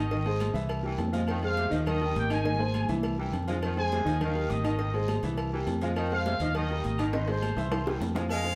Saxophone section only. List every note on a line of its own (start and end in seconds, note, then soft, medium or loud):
0.00 0.27 D#3 medium
0.85 1.00 E3 medium
1.14 1.21 G#3 medium
1.29 1.44 D#3 medium
1.58 1.65 C3 medium
1.73 1.80 F3 medium
1.87 2.61 D#3 loud
3.19 3.34 E3 medium
3.48 3.55 G#3 medium
3.63 3.78 D#3 medium
3.93 4.00 C3 medium
4.07 4.14 F3 medium
4.22 4.96 D#3 loud
5.52 5.68 E3 medium
5.82 5.89 G#3 medium
5.97 6.12 D#3 loud
6.26 6.33 C3 medium
6.40 6.48 F3 medium
6.56 7.29 D#3 loud
7.87 8.02 E3 medium
8.16 8.23 G#3 medium
8.30 8.53 G#3 loud